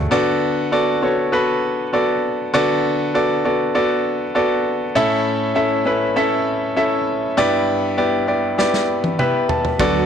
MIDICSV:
0, 0, Header, 1, 5, 480
1, 0, Start_track
1, 0, Tempo, 604839
1, 91, Time_signature, 4, 2, 24, 8
1, 7983, End_track
2, 0, Start_track
2, 0, Title_t, "Grand piano"
2, 0, Program_c, 0, 0
2, 0, Control_c, 0, 64, 127
2, 0, Note_on_c, 0, 57, 72
2, 0, Note_on_c, 0, 66, 65
2, 0, Note_on_c, 0, 68, 85
2, 0, Note_on_c, 0, 74, 81
2, 87, Note_on_c, 0, 59, 108
2, 90, Note_off_c, 0, 66, 0
2, 90, Note_on_c, 0, 66, 96
2, 91, Note_on_c, 0, 50, 73
2, 91, Note_on_c, 0, 69, 95
2, 93, Note_off_c, 0, 74, 0
2, 93, Note_on_c, 0, 74, 109
2, 100, Control_c, 0, 64, 0
2, 101, Note_off_c, 0, 57, 0
2, 108, Note_off_c, 0, 68, 0
2, 246, Control_c, 0, 64, 127
2, 478, Note_off_c, 0, 59, 0
2, 480, Note_off_c, 0, 66, 0
2, 480, Note_off_c, 0, 69, 0
2, 481, Note_off_c, 0, 74, 0
2, 570, Note_on_c, 0, 59, 79
2, 573, Note_on_c, 0, 66, 76
2, 573, Note_on_c, 0, 69, 78
2, 576, Note_on_c, 0, 74, 93
2, 765, Note_off_c, 0, 59, 0
2, 767, Note_off_c, 0, 66, 0
2, 767, Note_off_c, 0, 69, 0
2, 768, Note_off_c, 0, 74, 0
2, 780, Note_off_c, 0, 50, 0
2, 809, Note_on_c, 0, 59, 70
2, 812, Note_on_c, 0, 66, 66
2, 814, Note_on_c, 0, 69, 65
2, 817, Note_on_c, 0, 73, 80
2, 1005, Note_off_c, 0, 59, 0
2, 1006, Note_off_c, 0, 66, 0
2, 1007, Note_off_c, 0, 69, 0
2, 1009, Note_off_c, 0, 73, 0
2, 1048, Note_on_c, 0, 59, 85
2, 1050, Note_on_c, 0, 66, 75
2, 1053, Note_on_c, 0, 69, 80
2, 1055, Note_on_c, 0, 71, 94
2, 1439, Note_off_c, 0, 59, 0
2, 1440, Note_off_c, 0, 66, 0
2, 1441, Note_off_c, 0, 69, 0
2, 1442, Note_off_c, 0, 71, 0
2, 1530, Note_on_c, 0, 59, 77
2, 1531, Note_on_c, 0, 66, 74
2, 1535, Note_on_c, 0, 69, 75
2, 1536, Note_on_c, 0, 74, 88
2, 1920, Note_off_c, 0, 59, 0
2, 1921, Note_off_c, 0, 66, 0
2, 1922, Note_off_c, 0, 69, 0
2, 1923, Note_off_c, 0, 74, 0
2, 2012, Note_on_c, 0, 59, 107
2, 2014, Note_on_c, 0, 66, 103
2, 2015, Note_on_c, 0, 50, 70
2, 2017, Note_on_c, 0, 69, 98
2, 2018, Note_on_c, 0, 74, 116
2, 2401, Note_off_c, 0, 59, 0
2, 2402, Note_off_c, 0, 66, 0
2, 2403, Note_off_c, 0, 69, 0
2, 2404, Note_off_c, 0, 74, 0
2, 2495, Note_on_c, 0, 59, 79
2, 2496, Note_on_c, 0, 66, 76
2, 2498, Note_on_c, 0, 69, 78
2, 2500, Note_on_c, 0, 74, 98
2, 2688, Note_off_c, 0, 59, 0
2, 2689, Note_off_c, 0, 66, 0
2, 2690, Note_off_c, 0, 69, 0
2, 2691, Note_off_c, 0, 74, 0
2, 2702, Note_off_c, 0, 50, 0
2, 2735, Note_on_c, 0, 59, 74
2, 2737, Note_on_c, 0, 66, 67
2, 2738, Note_on_c, 0, 69, 67
2, 2740, Note_on_c, 0, 74, 79
2, 2928, Note_off_c, 0, 59, 0
2, 2929, Note_off_c, 0, 66, 0
2, 2930, Note_off_c, 0, 69, 0
2, 2931, Note_off_c, 0, 74, 0
2, 2972, Note_on_c, 0, 59, 86
2, 2974, Note_on_c, 0, 66, 80
2, 2975, Note_on_c, 0, 69, 81
2, 2977, Note_on_c, 0, 74, 96
2, 3361, Note_off_c, 0, 59, 0
2, 3362, Note_off_c, 0, 66, 0
2, 3363, Note_off_c, 0, 69, 0
2, 3364, Note_off_c, 0, 74, 0
2, 3451, Note_on_c, 0, 59, 88
2, 3453, Note_on_c, 0, 66, 76
2, 3454, Note_on_c, 0, 69, 81
2, 3457, Note_on_c, 0, 74, 92
2, 3840, Note_off_c, 0, 59, 0
2, 3841, Note_off_c, 0, 66, 0
2, 3842, Note_off_c, 0, 69, 0
2, 3843, Note_off_c, 0, 74, 0
2, 3931, Note_on_c, 0, 61, 107
2, 3932, Note_on_c, 0, 64, 102
2, 3933, Note_on_c, 0, 45, 73
2, 3933, Note_on_c, 0, 69, 101
2, 3935, Note_on_c, 0, 76, 115
2, 3945, Control_c, 0, 64, 0
2, 4102, Control_c, 0, 64, 127
2, 4321, Note_off_c, 0, 61, 0
2, 4321, Note_off_c, 0, 64, 0
2, 4322, Note_off_c, 0, 69, 0
2, 4323, Note_off_c, 0, 76, 0
2, 4407, Note_on_c, 0, 61, 86
2, 4408, Note_on_c, 0, 64, 81
2, 4410, Note_on_c, 0, 69, 82
2, 4412, Note_on_c, 0, 76, 94
2, 4604, Note_off_c, 0, 61, 0
2, 4605, Note_off_c, 0, 64, 0
2, 4606, Note_off_c, 0, 69, 0
2, 4607, Note_off_c, 0, 76, 0
2, 4621, Note_off_c, 0, 45, 0
2, 4646, Note_on_c, 0, 61, 73
2, 4650, Note_on_c, 0, 64, 67
2, 4650, Note_on_c, 0, 69, 68
2, 4654, Note_on_c, 0, 71, 83
2, 4844, Note_off_c, 0, 61, 0
2, 4846, Note_off_c, 0, 64, 0
2, 4846, Note_off_c, 0, 69, 0
2, 4848, Note_off_c, 0, 71, 0
2, 4889, Note_on_c, 0, 61, 90
2, 4892, Note_on_c, 0, 64, 79
2, 4892, Note_on_c, 0, 69, 85
2, 4893, Note_on_c, 0, 76, 99
2, 5280, Note_off_c, 0, 61, 0
2, 5281, Note_off_c, 0, 64, 0
2, 5281, Note_off_c, 0, 69, 0
2, 5282, Note_off_c, 0, 76, 0
2, 5368, Note_on_c, 0, 61, 87
2, 5370, Note_on_c, 0, 64, 76
2, 5373, Note_on_c, 0, 69, 77
2, 5373, Note_on_c, 0, 76, 89
2, 5759, Note_off_c, 0, 61, 0
2, 5760, Note_off_c, 0, 64, 0
2, 5762, Note_off_c, 0, 69, 0
2, 5762, Note_off_c, 0, 76, 0
2, 5849, Note_on_c, 0, 59, 101
2, 5851, Note_on_c, 0, 64, 101
2, 5853, Note_on_c, 0, 43, 76
2, 5853, Note_on_c, 0, 67, 95
2, 5855, Note_on_c, 0, 74, 124
2, 5862, Control_c, 0, 64, 0
2, 5997, Control_c, 0, 64, 127
2, 6240, Note_off_c, 0, 59, 0
2, 6241, Note_off_c, 0, 64, 0
2, 6242, Note_off_c, 0, 67, 0
2, 6243, Note_off_c, 0, 74, 0
2, 6329, Note_on_c, 0, 59, 81
2, 6330, Note_on_c, 0, 64, 79
2, 6331, Note_on_c, 0, 67, 78
2, 6332, Note_on_c, 0, 74, 92
2, 6525, Note_off_c, 0, 59, 0
2, 6526, Note_off_c, 0, 64, 0
2, 6526, Note_off_c, 0, 67, 0
2, 6527, Note_off_c, 0, 74, 0
2, 6541, Note_off_c, 0, 43, 0
2, 6567, Note_on_c, 0, 59, 73
2, 6569, Note_on_c, 0, 64, 67
2, 6571, Note_on_c, 0, 67, 67
2, 6572, Note_on_c, 0, 74, 82
2, 6764, Note_off_c, 0, 59, 0
2, 6765, Note_off_c, 0, 64, 0
2, 6766, Note_off_c, 0, 67, 0
2, 6767, Note_off_c, 0, 74, 0
2, 6809, Note_on_c, 0, 59, 89
2, 6811, Note_on_c, 0, 64, 79
2, 6812, Note_on_c, 0, 67, 79
2, 6814, Note_on_c, 0, 74, 94
2, 7199, Note_off_c, 0, 59, 0
2, 7200, Note_off_c, 0, 64, 0
2, 7201, Note_off_c, 0, 67, 0
2, 7202, Note_off_c, 0, 74, 0
2, 7291, Note_on_c, 0, 59, 80
2, 7293, Note_on_c, 0, 76, 70
2, 7294, Note_on_c, 0, 64, 74
2, 7294, Note_on_c, 0, 67, 74
2, 7296, Note_on_c, 0, 71, 87
2, 7516, Note_off_c, 0, 76, 0
2, 7532, Note_on_c, 0, 81, 67
2, 7680, Note_off_c, 0, 59, 0
2, 7682, Note_off_c, 0, 64, 0
2, 7682, Note_off_c, 0, 67, 0
2, 7683, Note_off_c, 0, 71, 0
2, 7756, Note_off_c, 0, 81, 0
2, 7773, Note_on_c, 0, 59, 106
2, 7776, Note_on_c, 0, 66, 98
2, 7777, Note_on_c, 0, 50, 67
2, 7777, Note_on_c, 0, 69, 99
2, 7780, Note_on_c, 0, 74, 112
2, 7784, Control_c, 0, 64, 0
2, 7928, Control_c, 0, 64, 127
2, 7983, Note_off_c, 0, 50, 0
2, 7983, Note_off_c, 0, 59, 0
2, 7983, Note_off_c, 0, 66, 0
2, 7983, Note_off_c, 0, 69, 0
2, 7983, Note_off_c, 0, 74, 0
2, 7983, End_track
3, 0, Start_track
3, 0, Title_t, "French horn section"
3, 0, Program_c, 1, 60
3, 7773, Note_on_c, 1, 54, 80
3, 7774, Note_on_c, 1, 66, 89
3, 7983, Note_off_c, 1, 54, 0
3, 7983, Note_off_c, 1, 66, 0
3, 7983, End_track
4, 0, Start_track
4, 0, Title_t, "Fingered electric bass"
4, 0, Program_c, 2, 33
4, 7774, Note_on_c, 2, 38, 109
4, 7970, Note_off_c, 2, 38, 0
4, 7983, End_track
5, 0, Start_track
5, 0, Title_t, "Drums"
5, 6815, Note_on_c, 9, 38, 58
5, 6894, Note_off_c, 9, 38, 0
5, 6934, Note_on_c, 9, 38, 54
5, 7013, Note_off_c, 9, 38, 0
5, 7173, Note_on_c, 9, 48, 67
5, 7253, Note_off_c, 9, 48, 0
5, 7294, Note_on_c, 9, 47, 86
5, 7374, Note_off_c, 9, 47, 0
5, 7534, Note_on_c, 9, 43, 98
5, 7614, Note_off_c, 9, 43, 0
5, 7656, Note_on_c, 9, 43, 87
5, 7735, Note_off_c, 9, 43, 0
5, 7773, Note_on_c, 9, 36, 113
5, 7775, Note_on_c, 9, 51, 68
5, 7853, Note_off_c, 9, 36, 0
5, 7855, Note_off_c, 9, 51, 0
5, 7983, End_track
0, 0, End_of_file